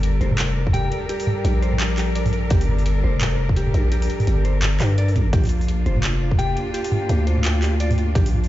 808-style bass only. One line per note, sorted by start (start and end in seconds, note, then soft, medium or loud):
0.00 0.20 G1 medium
0.21 0.90 F1 loud
1.45 2.49 A#1 loud
2.51 3.02 G1 loud
3.04 3.73 F1 loud
3.74 4.08 A#1 loud
4.27 4.79 G1 medium
4.80 5.32 G2 loud
5.33 5.85 A#1 medium
5.86 6.55 F1 loud
7.09 8.14 D2 loud
8.15 8.48 A#1 loud